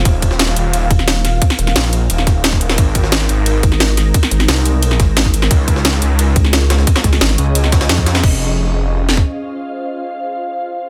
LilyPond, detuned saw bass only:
\new Staff \with { instrumentName = "Detuned saw bass" } { \clef bass \time 4/4 \key f \minor \tempo 4 = 176 ees,,4. ees,,4 r4. | r4 bes,,4 ees,,2 | aes,,4. aes,,4 r4. | r4 c,4. r4. |
des,4. des,4 r4. | r4. des,4. f,4 | f,,2. r4 | r1 | }